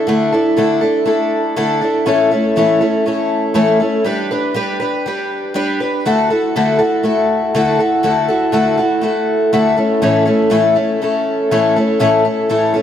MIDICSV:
0, 0, Header, 1, 2, 480
1, 0, Start_track
1, 0, Tempo, 497512
1, 71, Time_signature, 4, 2, 24, 8
1, 12371, End_track
2, 0, Start_track
2, 0, Title_t, "Twelve-string acoustic guitar"
2, 0, Program_c, 0, 25
2, 66, Note_on_c, 0, 50, 72
2, 77, Note_on_c, 0, 57, 68
2, 84, Note_on_c, 0, 62, 75
2, 86, Note_on_c, 0, 64, 78
2, 86, Note_on_c, 0, 69, 70
2, 300, Note_off_c, 0, 69, 0
2, 309, Note_off_c, 0, 50, 0
2, 312, Note_on_c, 0, 69, 49
2, 315, Note_off_c, 0, 57, 0
2, 318, Note_off_c, 0, 62, 0
2, 319, Note_off_c, 0, 64, 0
2, 329, Note_on_c, 0, 64, 51
2, 331, Note_on_c, 0, 62, 46
2, 546, Note_on_c, 0, 50, 71
2, 550, Note_off_c, 0, 64, 0
2, 551, Note_off_c, 0, 62, 0
2, 552, Note_off_c, 0, 69, 0
2, 552, Note_on_c, 0, 57, 72
2, 562, Note_on_c, 0, 64, 82
2, 562, Note_on_c, 0, 69, 82
2, 563, Note_on_c, 0, 62, 73
2, 770, Note_off_c, 0, 69, 0
2, 782, Note_on_c, 0, 69, 60
2, 783, Note_off_c, 0, 64, 0
2, 789, Note_off_c, 0, 50, 0
2, 792, Note_off_c, 0, 57, 0
2, 793, Note_off_c, 0, 62, 0
2, 795, Note_on_c, 0, 64, 47
2, 804, Note_on_c, 0, 62, 40
2, 1010, Note_off_c, 0, 62, 0
2, 1017, Note_on_c, 0, 57, 60
2, 1021, Note_off_c, 0, 64, 0
2, 1021, Note_on_c, 0, 62, 54
2, 1027, Note_off_c, 0, 69, 0
2, 1033, Note_on_c, 0, 64, 60
2, 1037, Note_on_c, 0, 69, 63
2, 1498, Note_off_c, 0, 57, 0
2, 1503, Note_off_c, 0, 62, 0
2, 1503, Note_off_c, 0, 64, 0
2, 1509, Note_on_c, 0, 50, 74
2, 1510, Note_off_c, 0, 69, 0
2, 1510, Note_on_c, 0, 57, 68
2, 1515, Note_on_c, 0, 62, 76
2, 1515, Note_on_c, 0, 64, 83
2, 1522, Note_on_c, 0, 69, 85
2, 1737, Note_off_c, 0, 69, 0
2, 1747, Note_off_c, 0, 64, 0
2, 1748, Note_on_c, 0, 69, 47
2, 1751, Note_off_c, 0, 50, 0
2, 1751, Note_off_c, 0, 57, 0
2, 1754, Note_off_c, 0, 62, 0
2, 1759, Note_on_c, 0, 64, 41
2, 1772, Note_on_c, 0, 62, 40
2, 1985, Note_on_c, 0, 52, 78
2, 1988, Note_off_c, 0, 62, 0
2, 1988, Note_off_c, 0, 64, 0
2, 1989, Note_on_c, 0, 45, 70
2, 1990, Note_off_c, 0, 69, 0
2, 1992, Note_on_c, 0, 61, 77
2, 1995, Note_on_c, 0, 57, 68
2, 1999, Note_on_c, 0, 64, 80
2, 2008, Note_on_c, 0, 69, 80
2, 2218, Note_off_c, 0, 69, 0
2, 2223, Note_off_c, 0, 64, 0
2, 2229, Note_off_c, 0, 52, 0
2, 2230, Note_on_c, 0, 69, 53
2, 2231, Note_off_c, 0, 45, 0
2, 2232, Note_off_c, 0, 61, 0
2, 2234, Note_off_c, 0, 57, 0
2, 2235, Note_on_c, 0, 64, 52
2, 2245, Note_on_c, 0, 61, 48
2, 2254, Note_on_c, 0, 57, 43
2, 2468, Note_off_c, 0, 61, 0
2, 2468, Note_off_c, 0, 64, 0
2, 2470, Note_on_c, 0, 45, 74
2, 2471, Note_off_c, 0, 69, 0
2, 2472, Note_off_c, 0, 57, 0
2, 2477, Note_on_c, 0, 52, 70
2, 2479, Note_on_c, 0, 61, 75
2, 2479, Note_on_c, 0, 64, 77
2, 2484, Note_on_c, 0, 57, 80
2, 2492, Note_on_c, 0, 69, 83
2, 2696, Note_off_c, 0, 69, 0
2, 2707, Note_off_c, 0, 64, 0
2, 2708, Note_on_c, 0, 69, 56
2, 2710, Note_off_c, 0, 61, 0
2, 2711, Note_off_c, 0, 45, 0
2, 2713, Note_off_c, 0, 57, 0
2, 2715, Note_off_c, 0, 52, 0
2, 2719, Note_on_c, 0, 64, 55
2, 2721, Note_on_c, 0, 61, 48
2, 2724, Note_on_c, 0, 57, 44
2, 2937, Note_off_c, 0, 57, 0
2, 2941, Note_off_c, 0, 61, 0
2, 2949, Note_on_c, 0, 57, 56
2, 2950, Note_off_c, 0, 69, 0
2, 2952, Note_off_c, 0, 64, 0
2, 2952, Note_on_c, 0, 61, 59
2, 2964, Note_on_c, 0, 64, 65
2, 2972, Note_on_c, 0, 69, 65
2, 3413, Note_off_c, 0, 57, 0
2, 3417, Note_on_c, 0, 45, 81
2, 3418, Note_off_c, 0, 61, 0
2, 3418, Note_off_c, 0, 64, 0
2, 3423, Note_off_c, 0, 69, 0
2, 3424, Note_on_c, 0, 57, 83
2, 3425, Note_on_c, 0, 52, 77
2, 3429, Note_on_c, 0, 64, 89
2, 3430, Note_on_c, 0, 61, 82
2, 3434, Note_on_c, 0, 69, 88
2, 3653, Note_off_c, 0, 69, 0
2, 3659, Note_off_c, 0, 64, 0
2, 3665, Note_off_c, 0, 45, 0
2, 3665, Note_on_c, 0, 69, 53
2, 3668, Note_off_c, 0, 57, 0
2, 3669, Note_off_c, 0, 52, 0
2, 3671, Note_off_c, 0, 61, 0
2, 3671, Note_on_c, 0, 64, 46
2, 3684, Note_on_c, 0, 61, 43
2, 3685, Note_on_c, 0, 57, 47
2, 3898, Note_off_c, 0, 57, 0
2, 3902, Note_on_c, 0, 55, 80
2, 3908, Note_off_c, 0, 61, 0
2, 3909, Note_off_c, 0, 69, 0
2, 3911, Note_off_c, 0, 64, 0
2, 3912, Note_on_c, 0, 62, 79
2, 3915, Note_on_c, 0, 67, 75
2, 3923, Note_on_c, 0, 71, 80
2, 4145, Note_off_c, 0, 71, 0
2, 4147, Note_off_c, 0, 55, 0
2, 4153, Note_off_c, 0, 62, 0
2, 4154, Note_off_c, 0, 67, 0
2, 4157, Note_on_c, 0, 71, 58
2, 4166, Note_on_c, 0, 67, 56
2, 4172, Note_on_c, 0, 62, 49
2, 4382, Note_off_c, 0, 62, 0
2, 4384, Note_on_c, 0, 55, 78
2, 4389, Note_off_c, 0, 67, 0
2, 4390, Note_off_c, 0, 71, 0
2, 4394, Note_on_c, 0, 62, 81
2, 4400, Note_on_c, 0, 67, 85
2, 4401, Note_on_c, 0, 71, 84
2, 4617, Note_off_c, 0, 71, 0
2, 4628, Note_off_c, 0, 55, 0
2, 4628, Note_on_c, 0, 71, 60
2, 4633, Note_off_c, 0, 62, 0
2, 4637, Note_off_c, 0, 67, 0
2, 4647, Note_on_c, 0, 67, 54
2, 4653, Note_on_c, 0, 62, 44
2, 4871, Note_off_c, 0, 71, 0
2, 4880, Note_off_c, 0, 67, 0
2, 4881, Note_on_c, 0, 55, 66
2, 4883, Note_off_c, 0, 62, 0
2, 4893, Note_on_c, 0, 62, 62
2, 4900, Note_on_c, 0, 71, 65
2, 4902, Note_on_c, 0, 67, 62
2, 5335, Note_off_c, 0, 55, 0
2, 5346, Note_on_c, 0, 55, 76
2, 5350, Note_off_c, 0, 67, 0
2, 5353, Note_off_c, 0, 71, 0
2, 5354, Note_off_c, 0, 62, 0
2, 5358, Note_on_c, 0, 62, 81
2, 5361, Note_on_c, 0, 67, 89
2, 5364, Note_on_c, 0, 71, 80
2, 5586, Note_off_c, 0, 71, 0
2, 5590, Note_off_c, 0, 55, 0
2, 5595, Note_off_c, 0, 62, 0
2, 5597, Note_off_c, 0, 67, 0
2, 5598, Note_on_c, 0, 71, 57
2, 5613, Note_on_c, 0, 67, 46
2, 5628, Note_on_c, 0, 62, 42
2, 5836, Note_off_c, 0, 71, 0
2, 5841, Note_on_c, 0, 50, 68
2, 5843, Note_off_c, 0, 67, 0
2, 5844, Note_on_c, 0, 57, 73
2, 5846, Note_off_c, 0, 62, 0
2, 5848, Note_on_c, 0, 66, 82
2, 5850, Note_on_c, 0, 64, 84
2, 5856, Note_on_c, 0, 69, 87
2, 6069, Note_off_c, 0, 69, 0
2, 6077, Note_off_c, 0, 50, 0
2, 6078, Note_off_c, 0, 57, 0
2, 6081, Note_off_c, 0, 64, 0
2, 6081, Note_off_c, 0, 66, 0
2, 6081, Note_on_c, 0, 69, 57
2, 6092, Note_on_c, 0, 66, 51
2, 6101, Note_on_c, 0, 64, 44
2, 6317, Note_off_c, 0, 69, 0
2, 6320, Note_off_c, 0, 64, 0
2, 6323, Note_off_c, 0, 66, 0
2, 6326, Note_on_c, 0, 50, 79
2, 6331, Note_on_c, 0, 57, 83
2, 6331, Note_on_c, 0, 64, 83
2, 6334, Note_on_c, 0, 66, 85
2, 6337, Note_on_c, 0, 69, 80
2, 6535, Note_off_c, 0, 69, 0
2, 6545, Note_off_c, 0, 66, 0
2, 6546, Note_on_c, 0, 69, 58
2, 6557, Note_on_c, 0, 66, 57
2, 6560, Note_off_c, 0, 50, 0
2, 6560, Note_off_c, 0, 64, 0
2, 6562, Note_off_c, 0, 57, 0
2, 6571, Note_on_c, 0, 64, 51
2, 6786, Note_off_c, 0, 64, 0
2, 6786, Note_on_c, 0, 57, 67
2, 6789, Note_off_c, 0, 66, 0
2, 6790, Note_off_c, 0, 69, 0
2, 6797, Note_on_c, 0, 64, 65
2, 6800, Note_on_c, 0, 66, 64
2, 6806, Note_on_c, 0, 69, 69
2, 7275, Note_off_c, 0, 57, 0
2, 7277, Note_off_c, 0, 66, 0
2, 7279, Note_on_c, 0, 57, 85
2, 7280, Note_on_c, 0, 50, 82
2, 7285, Note_off_c, 0, 64, 0
2, 7289, Note_on_c, 0, 64, 80
2, 7291, Note_off_c, 0, 69, 0
2, 7293, Note_on_c, 0, 66, 93
2, 7294, Note_on_c, 0, 69, 93
2, 7501, Note_off_c, 0, 69, 0
2, 7513, Note_on_c, 0, 69, 56
2, 7516, Note_off_c, 0, 57, 0
2, 7517, Note_off_c, 0, 50, 0
2, 7517, Note_off_c, 0, 66, 0
2, 7521, Note_off_c, 0, 64, 0
2, 7528, Note_on_c, 0, 66, 55
2, 7538, Note_on_c, 0, 64, 46
2, 7745, Note_off_c, 0, 64, 0
2, 7745, Note_off_c, 0, 66, 0
2, 7747, Note_on_c, 0, 50, 78
2, 7752, Note_on_c, 0, 57, 70
2, 7753, Note_off_c, 0, 69, 0
2, 7756, Note_on_c, 0, 64, 77
2, 7757, Note_on_c, 0, 66, 84
2, 7767, Note_on_c, 0, 69, 80
2, 7982, Note_off_c, 0, 69, 0
2, 7990, Note_off_c, 0, 50, 0
2, 7993, Note_off_c, 0, 57, 0
2, 7993, Note_on_c, 0, 69, 58
2, 7995, Note_off_c, 0, 64, 0
2, 7995, Note_off_c, 0, 66, 0
2, 8005, Note_on_c, 0, 66, 53
2, 8011, Note_on_c, 0, 64, 45
2, 8220, Note_off_c, 0, 66, 0
2, 8221, Note_off_c, 0, 64, 0
2, 8221, Note_on_c, 0, 50, 77
2, 8228, Note_on_c, 0, 57, 78
2, 8230, Note_off_c, 0, 69, 0
2, 8232, Note_on_c, 0, 64, 90
2, 8232, Note_on_c, 0, 66, 92
2, 8242, Note_on_c, 0, 69, 76
2, 8455, Note_off_c, 0, 69, 0
2, 8466, Note_on_c, 0, 69, 57
2, 8468, Note_off_c, 0, 50, 0
2, 8468, Note_off_c, 0, 66, 0
2, 8471, Note_off_c, 0, 57, 0
2, 8473, Note_off_c, 0, 64, 0
2, 8479, Note_on_c, 0, 66, 55
2, 8488, Note_on_c, 0, 64, 46
2, 8696, Note_on_c, 0, 57, 63
2, 8697, Note_off_c, 0, 64, 0
2, 8702, Note_off_c, 0, 66, 0
2, 8708, Note_off_c, 0, 69, 0
2, 8709, Note_on_c, 0, 64, 61
2, 8714, Note_on_c, 0, 66, 68
2, 8720, Note_on_c, 0, 69, 67
2, 9187, Note_off_c, 0, 66, 0
2, 9188, Note_off_c, 0, 57, 0
2, 9191, Note_on_c, 0, 57, 80
2, 9193, Note_on_c, 0, 50, 76
2, 9196, Note_off_c, 0, 64, 0
2, 9199, Note_on_c, 0, 66, 80
2, 9200, Note_on_c, 0, 64, 83
2, 9203, Note_off_c, 0, 69, 0
2, 9207, Note_on_c, 0, 69, 89
2, 9409, Note_off_c, 0, 69, 0
2, 9419, Note_off_c, 0, 64, 0
2, 9421, Note_on_c, 0, 69, 52
2, 9427, Note_off_c, 0, 66, 0
2, 9428, Note_off_c, 0, 57, 0
2, 9431, Note_on_c, 0, 64, 51
2, 9434, Note_off_c, 0, 50, 0
2, 9435, Note_on_c, 0, 61, 44
2, 9439, Note_on_c, 0, 57, 43
2, 9659, Note_off_c, 0, 57, 0
2, 9661, Note_off_c, 0, 61, 0
2, 9664, Note_on_c, 0, 45, 73
2, 9665, Note_on_c, 0, 52, 84
2, 9668, Note_off_c, 0, 69, 0
2, 9669, Note_off_c, 0, 64, 0
2, 9671, Note_on_c, 0, 57, 80
2, 9673, Note_on_c, 0, 61, 86
2, 9679, Note_on_c, 0, 69, 80
2, 9681, Note_on_c, 0, 64, 80
2, 9882, Note_off_c, 0, 69, 0
2, 9894, Note_on_c, 0, 69, 56
2, 9895, Note_off_c, 0, 64, 0
2, 9903, Note_off_c, 0, 61, 0
2, 9904, Note_off_c, 0, 57, 0
2, 9907, Note_on_c, 0, 64, 54
2, 9909, Note_off_c, 0, 45, 0
2, 9910, Note_off_c, 0, 52, 0
2, 9914, Note_on_c, 0, 61, 53
2, 9916, Note_on_c, 0, 57, 51
2, 10128, Note_on_c, 0, 45, 79
2, 10129, Note_off_c, 0, 57, 0
2, 10130, Note_off_c, 0, 64, 0
2, 10134, Note_off_c, 0, 61, 0
2, 10136, Note_off_c, 0, 69, 0
2, 10136, Note_on_c, 0, 52, 79
2, 10140, Note_on_c, 0, 57, 81
2, 10142, Note_on_c, 0, 64, 80
2, 10146, Note_on_c, 0, 61, 78
2, 10147, Note_on_c, 0, 69, 93
2, 10364, Note_off_c, 0, 69, 0
2, 10370, Note_off_c, 0, 64, 0
2, 10372, Note_off_c, 0, 61, 0
2, 10375, Note_on_c, 0, 69, 59
2, 10376, Note_off_c, 0, 57, 0
2, 10382, Note_off_c, 0, 45, 0
2, 10382, Note_on_c, 0, 64, 58
2, 10384, Note_on_c, 0, 61, 49
2, 10386, Note_off_c, 0, 52, 0
2, 10387, Note_on_c, 0, 57, 46
2, 10616, Note_off_c, 0, 57, 0
2, 10622, Note_off_c, 0, 61, 0
2, 10625, Note_off_c, 0, 69, 0
2, 10627, Note_on_c, 0, 57, 64
2, 10628, Note_off_c, 0, 64, 0
2, 10633, Note_on_c, 0, 61, 64
2, 10639, Note_on_c, 0, 64, 70
2, 10648, Note_on_c, 0, 69, 69
2, 11103, Note_off_c, 0, 61, 0
2, 11108, Note_on_c, 0, 45, 81
2, 11108, Note_on_c, 0, 52, 80
2, 11111, Note_off_c, 0, 64, 0
2, 11112, Note_off_c, 0, 57, 0
2, 11115, Note_on_c, 0, 61, 86
2, 11115, Note_on_c, 0, 64, 88
2, 11116, Note_on_c, 0, 57, 85
2, 11117, Note_off_c, 0, 69, 0
2, 11121, Note_on_c, 0, 69, 80
2, 11336, Note_off_c, 0, 69, 0
2, 11338, Note_off_c, 0, 64, 0
2, 11348, Note_on_c, 0, 69, 53
2, 11350, Note_off_c, 0, 57, 0
2, 11350, Note_on_c, 0, 64, 56
2, 11351, Note_off_c, 0, 45, 0
2, 11351, Note_off_c, 0, 52, 0
2, 11351, Note_off_c, 0, 61, 0
2, 11362, Note_on_c, 0, 57, 45
2, 11362, Note_on_c, 0, 61, 50
2, 11567, Note_off_c, 0, 57, 0
2, 11568, Note_off_c, 0, 61, 0
2, 11573, Note_on_c, 0, 45, 79
2, 11575, Note_off_c, 0, 69, 0
2, 11576, Note_off_c, 0, 64, 0
2, 11578, Note_on_c, 0, 57, 79
2, 11580, Note_on_c, 0, 52, 73
2, 11580, Note_on_c, 0, 61, 85
2, 11587, Note_on_c, 0, 69, 89
2, 11588, Note_on_c, 0, 64, 96
2, 11803, Note_off_c, 0, 69, 0
2, 11808, Note_off_c, 0, 64, 0
2, 11814, Note_off_c, 0, 61, 0
2, 11815, Note_on_c, 0, 69, 61
2, 11820, Note_on_c, 0, 64, 56
2, 11821, Note_off_c, 0, 57, 0
2, 11824, Note_off_c, 0, 45, 0
2, 11825, Note_on_c, 0, 61, 52
2, 11828, Note_off_c, 0, 52, 0
2, 11832, Note_on_c, 0, 57, 48
2, 12049, Note_off_c, 0, 57, 0
2, 12054, Note_off_c, 0, 61, 0
2, 12054, Note_off_c, 0, 64, 0
2, 12054, Note_on_c, 0, 45, 83
2, 12055, Note_off_c, 0, 69, 0
2, 12058, Note_on_c, 0, 52, 82
2, 12061, Note_on_c, 0, 57, 75
2, 12065, Note_on_c, 0, 61, 78
2, 12066, Note_on_c, 0, 64, 83
2, 12066, Note_on_c, 0, 69, 85
2, 12277, Note_off_c, 0, 69, 0
2, 12287, Note_off_c, 0, 64, 0
2, 12289, Note_on_c, 0, 69, 65
2, 12295, Note_off_c, 0, 61, 0
2, 12299, Note_on_c, 0, 64, 62
2, 12305, Note_off_c, 0, 45, 0
2, 12307, Note_off_c, 0, 52, 0
2, 12307, Note_on_c, 0, 61, 51
2, 12308, Note_off_c, 0, 57, 0
2, 12320, Note_on_c, 0, 57, 54
2, 12371, Note_off_c, 0, 57, 0
2, 12371, Note_off_c, 0, 61, 0
2, 12371, Note_off_c, 0, 64, 0
2, 12371, Note_off_c, 0, 69, 0
2, 12371, End_track
0, 0, End_of_file